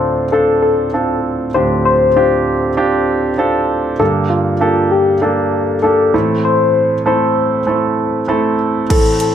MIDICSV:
0, 0, Header, 1, 4, 480
1, 0, Start_track
1, 0, Key_signature, -1, "minor"
1, 0, Tempo, 612307
1, 1217, Time_signature, 4, 2, 24, 8
1, 7327, End_track
2, 0, Start_track
2, 0, Title_t, "Soft synth lead"
2, 0, Program_c, 0, 80
2, 0, Note_on_c, 0, 72, 89
2, 252, Note_on_c, 0, 69, 73
2, 264, Note_off_c, 0, 72, 0
2, 484, Note_off_c, 0, 69, 0
2, 489, Note_on_c, 0, 69, 82
2, 941, Note_off_c, 0, 69, 0
2, 1211, Note_on_c, 0, 72, 109
2, 1437, Note_off_c, 0, 72, 0
2, 1454, Note_on_c, 0, 72, 110
2, 2384, Note_off_c, 0, 72, 0
2, 3133, Note_on_c, 0, 69, 83
2, 3242, Note_off_c, 0, 69, 0
2, 3370, Note_on_c, 0, 65, 84
2, 3854, Note_on_c, 0, 67, 77
2, 3866, Note_off_c, 0, 65, 0
2, 4087, Note_off_c, 0, 67, 0
2, 4092, Note_on_c, 0, 69, 78
2, 4543, Note_off_c, 0, 69, 0
2, 4566, Note_on_c, 0, 69, 85
2, 5020, Note_off_c, 0, 69, 0
2, 5056, Note_on_c, 0, 72, 110
2, 5505, Note_off_c, 0, 72, 0
2, 5545, Note_on_c, 0, 72, 82
2, 6230, Note_off_c, 0, 72, 0
2, 6985, Note_on_c, 0, 69, 100
2, 7205, Note_off_c, 0, 69, 0
2, 7221, Note_on_c, 0, 69, 90
2, 7327, Note_off_c, 0, 69, 0
2, 7327, End_track
3, 0, Start_track
3, 0, Title_t, "Grand piano"
3, 0, Program_c, 1, 0
3, 0, Control_c, 1, 64, 127
3, 0, Note_on_c, 1, 38, 45
3, 0, Note_on_c, 1, 45, 46
3, 0, Note_on_c, 1, 60, 57
3, 0, Note_on_c, 1, 62, 50
3, 0, Note_on_c, 1, 65, 50
3, 0, Note_on_c, 1, 69, 63
3, 192, Note_off_c, 1, 62, 0
3, 193, Note_off_c, 1, 60, 0
3, 193, Note_off_c, 1, 65, 0
3, 194, Note_off_c, 1, 69, 0
3, 255, Note_on_c, 1, 60, 59
3, 256, Note_on_c, 1, 62, 54
3, 256, Note_on_c, 1, 65, 54
3, 261, Note_on_c, 1, 69, 68
3, 671, Note_off_c, 1, 60, 0
3, 672, Note_off_c, 1, 62, 0
3, 672, Note_off_c, 1, 65, 0
3, 674, Note_off_c, 1, 69, 0
3, 731, Note_on_c, 1, 60, 52
3, 735, Note_on_c, 1, 62, 49
3, 737, Note_on_c, 1, 65, 48
3, 738, Note_on_c, 1, 69, 60
3, 1149, Note_off_c, 1, 60, 0
3, 1151, Note_off_c, 1, 62, 0
3, 1152, Note_off_c, 1, 65, 0
3, 1153, Note_off_c, 1, 69, 0
3, 1186, Note_off_c, 1, 38, 0
3, 1187, Note_off_c, 1, 45, 0
3, 1210, Note_on_c, 1, 60, 50
3, 1214, Note_on_c, 1, 45, 42
3, 1214, Note_on_c, 1, 65, 52
3, 1215, Note_on_c, 1, 62, 50
3, 1216, Note_on_c, 1, 38, 45
3, 1218, Note_on_c, 1, 67, 60
3, 1629, Note_off_c, 1, 60, 0
3, 1631, Note_off_c, 1, 62, 0
3, 1631, Note_off_c, 1, 65, 0
3, 1633, Note_off_c, 1, 67, 0
3, 1692, Note_on_c, 1, 60, 55
3, 1695, Note_on_c, 1, 62, 53
3, 1697, Note_on_c, 1, 65, 53
3, 1699, Note_on_c, 1, 67, 68
3, 2110, Note_off_c, 1, 60, 0
3, 2111, Note_off_c, 1, 62, 0
3, 2112, Note_off_c, 1, 65, 0
3, 2113, Note_off_c, 1, 67, 0
3, 2171, Note_on_c, 1, 60, 67
3, 2174, Note_on_c, 1, 62, 68
3, 2177, Note_on_c, 1, 65, 62
3, 2177, Note_on_c, 1, 67, 79
3, 2589, Note_off_c, 1, 60, 0
3, 2591, Note_off_c, 1, 62, 0
3, 2592, Note_off_c, 1, 65, 0
3, 2592, Note_off_c, 1, 67, 0
3, 2648, Note_on_c, 1, 60, 64
3, 2650, Note_on_c, 1, 62, 59
3, 2655, Note_on_c, 1, 65, 60
3, 2656, Note_on_c, 1, 69, 75
3, 3068, Note_off_c, 1, 60, 0
3, 3069, Note_off_c, 1, 62, 0
3, 3071, Note_off_c, 1, 65, 0
3, 3072, Note_off_c, 1, 69, 0
3, 3104, Note_off_c, 1, 45, 0
3, 3105, Note_off_c, 1, 38, 0
3, 3131, Note_on_c, 1, 50, 48
3, 3131, Note_on_c, 1, 58, 55
3, 3133, Note_on_c, 1, 43, 49
3, 3133, Note_on_c, 1, 62, 47
3, 3133, Note_on_c, 1, 67, 50
3, 3136, Note_on_c, 1, 69, 65
3, 3147, Control_c, 1, 64, 0
3, 3306, Control_c, 1, 64, 127
3, 3549, Note_off_c, 1, 58, 0
3, 3550, Note_off_c, 1, 62, 0
3, 3550, Note_off_c, 1, 67, 0
3, 3552, Note_off_c, 1, 69, 0
3, 3610, Note_on_c, 1, 58, 57
3, 3613, Note_on_c, 1, 62, 56
3, 3613, Note_on_c, 1, 67, 58
3, 3616, Note_on_c, 1, 69, 72
3, 4029, Note_off_c, 1, 58, 0
3, 4030, Note_off_c, 1, 62, 0
3, 4030, Note_off_c, 1, 67, 0
3, 4032, Note_off_c, 1, 69, 0
3, 4090, Note_on_c, 1, 58, 61
3, 4092, Note_on_c, 1, 62, 57
3, 4093, Note_on_c, 1, 67, 55
3, 4096, Note_on_c, 1, 69, 62
3, 4509, Note_off_c, 1, 58, 0
3, 4510, Note_off_c, 1, 62, 0
3, 4510, Note_off_c, 1, 67, 0
3, 4512, Note_off_c, 1, 69, 0
3, 4574, Note_on_c, 1, 58, 54
3, 4575, Note_on_c, 1, 62, 54
3, 4578, Note_on_c, 1, 67, 55
3, 4579, Note_on_c, 1, 69, 64
3, 4783, Note_off_c, 1, 50, 0
3, 4784, Note_off_c, 1, 43, 0
3, 4805, Note_off_c, 1, 69, 0
3, 4812, Note_on_c, 1, 60, 56
3, 4813, Note_on_c, 1, 57, 60
3, 4814, Note_on_c, 1, 45, 51
3, 4814, Note_on_c, 1, 64, 57
3, 4815, Note_on_c, 1, 52, 46
3, 4816, Note_off_c, 1, 58, 0
3, 4816, Note_off_c, 1, 62, 0
3, 4817, Note_on_c, 1, 69, 63
3, 4818, Note_off_c, 1, 67, 0
3, 4826, Control_c, 1, 64, 0
3, 4956, Control_c, 1, 64, 127
3, 5438, Note_off_c, 1, 57, 0
3, 5438, Note_off_c, 1, 60, 0
3, 5438, Note_off_c, 1, 64, 0
3, 5440, Note_off_c, 1, 69, 0
3, 5532, Note_on_c, 1, 57, 61
3, 5534, Note_on_c, 1, 60, 53
3, 5535, Note_on_c, 1, 64, 53
3, 5536, Note_on_c, 1, 69, 64
3, 5950, Note_off_c, 1, 57, 0
3, 5951, Note_off_c, 1, 60, 0
3, 5952, Note_off_c, 1, 64, 0
3, 5952, Note_off_c, 1, 69, 0
3, 6011, Note_on_c, 1, 57, 54
3, 6014, Note_on_c, 1, 60, 53
3, 6015, Note_on_c, 1, 64, 50
3, 6017, Note_on_c, 1, 69, 61
3, 6429, Note_off_c, 1, 57, 0
3, 6431, Note_off_c, 1, 60, 0
3, 6431, Note_off_c, 1, 64, 0
3, 6432, Note_off_c, 1, 69, 0
3, 6492, Note_on_c, 1, 57, 63
3, 6495, Note_on_c, 1, 60, 60
3, 6495, Note_on_c, 1, 64, 58
3, 6497, Note_on_c, 1, 69, 71
3, 6704, Note_off_c, 1, 45, 0
3, 6705, Note_off_c, 1, 52, 0
3, 6910, Note_off_c, 1, 57, 0
3, 6911, Note_off_c, 1, 64, 0
3, 6912, Note_off_c, 1, 60, 0
3, 6912, Note_off_c, 1, 69, 0
3, 6974, Note_on_c, 1, 57, 56
3, 6975, Note_on_c, 1, 60, 53
3, 6976, Note_on_c, 1, 64, 50
3, 6977, Note_on_c, 1, 45, 47
3, 6977, Note_on_c, 1, 52, 45
3, 6977, Note_on_c, 1, 69, 60
3, 6986, Control_c, 1, 64, 0
3, 7127, Control_c, 1, 64, 127
3, 7327, Note_off_c, 1, 45, 0
3, 7327, Note_off_c, 1, 52, 0
3, 7327, Note_off_c, 1, 57, 0
3, 7327, Note_off_c, 1, 60, 0
3, 7327, Note_off_c, 1, 64, 0
3, 7327, Note_off_c, 1, 69, 0
3, 7327, End_track
4, 0, Start_track
4, 0, Title_t, "Drums"
4, 6979, Note_on_c, 9, 36, 95
4, 6979, Note_on_c, 9, 42, 76
4, 6979, Note_on_c, 9, 49, 80
4, 7057, Note_off_c, 9, 36, 0
4, 7057, Note_off_c, 9, 42, 0
4, 7057, Note_off_c, 9, 49, 0
4, 7212, Note_on_c, 9, 42, 55
4, 7290, Note_off_c, 9, 42, 0
4, 7327, End_track
0, 0, End_of_file